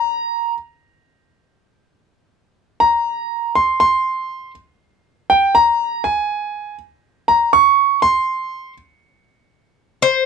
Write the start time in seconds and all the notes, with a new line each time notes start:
Already playing: A#5
2.80 A#5
3.55 C6
3.80 C6
5.30 G5
5.55 A#5
6.04 G#5
7.28 A#5
7.53 C#6
8.02 C6
10.02 C5